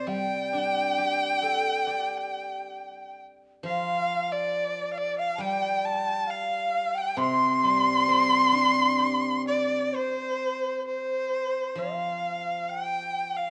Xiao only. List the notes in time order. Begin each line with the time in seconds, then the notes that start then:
Already playing: D5
0.09 G5
3.66 F5
4.32 D5
4.98 D5
5.19 F5
5.35 A5
5.40 G5
6.27 F5
6.95 G5
7.17 C6
9.45 D5
9.93 C5
10.87 C5
11.79 F5
12.70 G5
13.38 F5